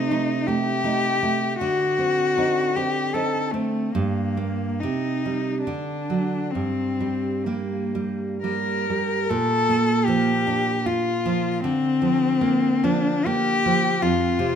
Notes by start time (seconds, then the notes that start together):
Already playing: C3 D#4
0.11 A3 D#4
0.47 A3 G4
0.84 A3 D#4
1.23 A3
1.59 D3 F#4
1.98 C4
2.37 C4 D#4
2.76 C4 G4
3.14 C4 D#4 A4
3.52 A3 C4
3.93 G2 A#3
4.37 A#3
4.80 C3 D#4
5.26 G3
5.62 D4
5.67 D3
6.10 F#3
6.51 G2 C4
7.00 G3
7.44 G3 A#3
7.95 G3
8.43 G3 A#3 A#4
8.90 G3
9.29 A#2 A4
9.69 A#3
10.06 F3 G4
10.47 D4
10.85 F4
11.26 F3
11.64 D3 C4
12.02 F3
12.41 A#3
12.84 F3 D4
13.26 A#3 G4
13.66 F3
14.02 F2 F4
14.39 C3